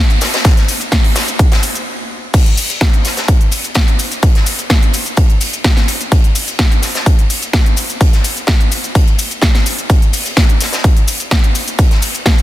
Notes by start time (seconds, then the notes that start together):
0.10 closed hi-hat, cabasa
0.21 snare, closed hi-hat, open hi-hat, cabasa
0.34 snare, closed hi-hat, cabasa
0.45 kick, snare, closed hi-hat, cabasa
0.57 snare, closed hi-hat, cabasa
0.68 closed hi-hat, open hi-hat, cabasa
0.81 closed hi-hat, cabasa
0.92 kick, snare, closed hi-hat, cabasa
1.04 open hi-hat, cabasa
1.16 snare, closed hi-hat, open hi-hat, cabasa
1.28 closed hi-hat, cabasa
1.39 kick, closed hi-hat, cabasa
1.52 snare, closed hi-hat, cabasa
1.63 open hi-hat, cabasa
1.75 closed hi-hat, cabasa
2.34 kick, closed hi-hat, crash, cabasa
2.46 closed hi-hat, cabasa
2.58 closed hi-hat, open hi-hat, cabasa
2.70 closed hi-hat, cabasa
2.81 kick, snare, closed hi-hat, cabasa
2.94 closed hi-hat, cabasa
3.05 snare, closed hi-hat, open hi-hat, cabasa
3.17 snare, closed hi-hat, cabasa
3.28 kick, closed hi-hat, cabasa
3.41 closed hi-hat, cabasa
3.51 closed hi-hat, open hi-hat, cabasa
3.64 closed hi-hat, cabasa
3.75 kick, snare, closed hi-hat, cabasa
3.88 closed hi-hat, cabasa
3.99 closed hi-hat, open hi-hat, cabasa
4.12 closed hi-hat, cabasa
4.23 kick, closed hi-hat, cabasa
4.35 snare, closed hi-hat, cabasa
4.46 closed hi-hat, open hi-hat, cabasa
4.59 closed hi-hat, cabasa
4.70 kick, snare, closed hi-hat, cabasa
4.83 closed hi-hat, cabasa
4.94 closed hi-hat, open hi-hat, cabasa
5.06 closed hi-hat, cabasa
5.17 kick, closed hi-hat, cabasa
5.30 closed hi-hat, cabasa
5.40 closed hi-hat, open hi-hat, cabasa
5.53 closed hi-hat, cabasa
5.64 kick, snare, closed hi-hat, cabasa
5.77 snare, closed hi-hat, cabasa
5.88 closed hi-hat, open hi-hat, cabasa
6.01 closed hi-hat, cabasa
6.12 kick, closed hi-hat, cabasa
6.24 closed hi-hat, cabasa
6.35 closed hi-hat, open hi-hat, cabasa
6.47 closed hi-hat, cabasa
6.59 kick, snare, closed hi-hat, cabasa
6.72 closed hi-hat, cabasa
6.82 snare, closed hi-hat, open hi-hat, cabasa
6.95 snare, closed hi-hat, cabasa
7.06 kick, closed hi-hat, cabasa
7.19 closed hi-hat, cabasa
7.30 closed hi-hat, open hi-hat, cabasa
7.42 closed hi-hat, cabasa
7.53 kick, snare, closed hi-hat, cabasa
7.66 closed hi-hat, cabasa
7.76 closed hi-hat, open hi-hat, cabasa
7.90 closed hi-hat, cabasa
8.01 kick, closed hi-hat, cabasa
8.13 snare, closed hi-hat, cabasa
8.24 closed hi-hat, open hi-hat, cabasa
8.37 closed hi-hat, cabasa
8.47 kick, snare, closed hi-hat, cabasa
8.60 closed hi-hat, cabasa
8.72 closed hi-hat, open hi-hat, cabasa
8.84 closed hi-hat, cabasa
8.95 kick, closed hi-hat, cabasa
9.08 closed hi-hat, cabasa
9.19 closed hi-hat, open hi-hat, cabasa
9.31 closed hi-hat, cabasa
9.42 kick, snare, closed hi-hat, cabasa
9.55 snare, closed hi-hat, cabasa
9.66 closed hi-hat, open hi-hat, cabasa
9.79 closed hi-hat, cabasa
9.90 kick, closed hi-hat, cabasa
10.02 closed hi-hat, cabasa
10.13 closed hi-hat, open hi-hat, cabasa
10.26 closed hi-hat, cabasa
10.37 kick, snare, closed hi-hat, cabasa
10.49 closed hi-hat, cabasa
10.61 snare, closed hi-hat, open hi-hat, cabasa
10.73 snare, closed hi-hat, cabasa
10.84 kick, closed hi-hat, cabasa
10.97 closed hi-hat, cabasa
11.08 closed hi-hat, open hi-hat, cabasa
11.20 closed hi-hat, cabasa
11.31 kick, snare, closed hi-hat, cabasa
11.44 closed hi-hat, cabasa
11.55 closed hi-hat, open hi-hat, cabasa
11.68 closed hi-hat, cabasa
11.79 kick, closed hi-hat, cabasa
11.91 snare, closed hi-hat, cabasa
12.02 closed hi-hat, open hi-hat, cabasa
12.15 closed hi-hat, cabasa
12.26 kick, snare, closed hi-hat, cabasa
12.38 closed hi-hat, cabasa